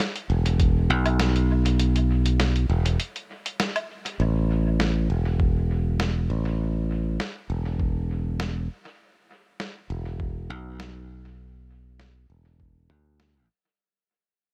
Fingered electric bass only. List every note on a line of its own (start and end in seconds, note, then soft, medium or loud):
0.30 0.90 E1 medium
0.90 2.67 B1 medium
2.70 2.96 E1 medium
4.20 5.07 A1 medium
5.10 6.27 E1 medium
6.30 7.17 A1 medium
7.50 8.67 E1 medium
9.90 10.50 E1 medium
10.50 12.27 B1 medium
12.30 12.90 E1 medium
12.90 13.47 D2 medium